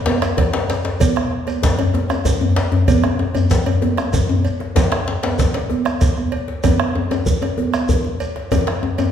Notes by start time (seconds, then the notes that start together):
0.06 djembe slap, djembe tone, high conga
0.22 bombo rim, cowbell, djembe slap, shekere
0.37 bombo low, cowbell, djembe slap, djembe bass, low conga
0.53 djembe slap, high conga
0.70 cowbell, djembe slap, high conga, shekere
0.84 djembe slap
1.00 bombo low, cowbell, djembe tone, high conga, djembe bass, low conga, shekere
1.16 bombo rim, cowbell, djembe slap
1.31 bombo rim, djembe slap
1.47 cowbell, djembe slap, high conga, shekere
1.63 bombo low, djembe slap, djembe bass, low conga, shekere
1.79 bombo rim, cowbell, djembe bass
1.94 djembe slap, djembe tone, high conga
2.10 bombo rim, cowbell, djembe slap, djembe tone, shekere
2.25 bombo low, cowbell, djembe tone, djembe bass, low conga, shekere
2.41 high conga, djembe bass
2.56 cowbell, djembe slap, high conga, shekere
2.72 bombo rim, djembe slap, djembe bass
2.88 bombo low, cowbell, djembe tone, high conga, djembe bass, low conga, shekere
3.04 bombo rim, cowbell, djembe slap, djembe tone
3.19 bombo rim, djembe slap, djembe tone
3.35 cowbell, djembe slap, high conga, djembe bass, shekere
3.50 bombo low, djembe slap, djembe bass, low conga, shekere
3.66 bombo rim, cowbell, djembe bass
3.82 djembe slap, djembe tone, high conga
3.97 bombo rim, cowbell, djembe slap, djembe tone, shekere
4.13 bombo low, cowbell, djembe tone, djembe bass, low conga, shekere
4.29 high conga, djembe bass
4.45 cowbell, high conga, shekere
4.60 bombo rim, djembe slap
4.76 bombo rim, bombo low, cowbell, djembe slap, djembe tone, high conga, djembe bass, low conga, shekere
4.92 bombo rim, cowbell, djembe slap, high conga
5.08 djembe slap, high conga
5.23 cowbell, djembe slap, high conga
5.39 bombo low, djembe slap, djembe bass, low conga, shekere
5.54 bombo rim, cowbell, djembe slap, high conga
5.70 djembe slap, djembe tone, high conga
5.85 bombo rim, cowbell, djembe slap, shekere
6.01 bombo rim, bombo low, cowbell, djembe slap, djembe bass, low conga, shekere
6.17 bombo rim, high conga
6.32 cowbell, high conga
6.48 djembe slap
6.64 bombo low, cowbell, djembe tone, high conga, djembe bass, low conga, shekere
6.79 bombo rim, cowbell, djembe slap
6.95 bombo rim, djembe slap, djembe tone
7.11 cowbell, djembe slap, high conga, djembe tone, shekere
7.26 bombo low, djembe bass, low conga, shekere
7.42 bombo rim, cowbell, djembe tone
7.58 djembe slap, high conga, djembe tone
7.73 bombo rim, cowbell, djembe slap, shekere
7.89 bombo low, low conga, djembe bass, shekere
8.05 high conga
8.20 cowbell, high conga, shekere
8.36 bombo rim, djembe slap
8.52 bombo low, cowbell, djembe tone, high conga, djembe bass, low conga, shekere
8.67 bombo rim, cowbell, djembe slap
8.83 bombo rim, djembe slap, djembe tone
8.98 cowbell, djembe slap, high conga, djembe tone, shekere